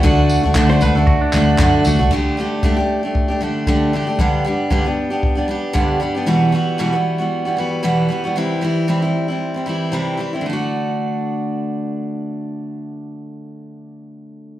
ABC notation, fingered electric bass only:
X:1
M:4/4
L:1/16
Q:"Swing 16ths" 1/4=115
K:Dmix
V:1 name="Fingered electric bass" clef=bass
D,,3 D,, D,2 D,,3 z D,,2 F,, z D,, C,, | z16 | z16 | z16 |
z16 | z16 | z16 |]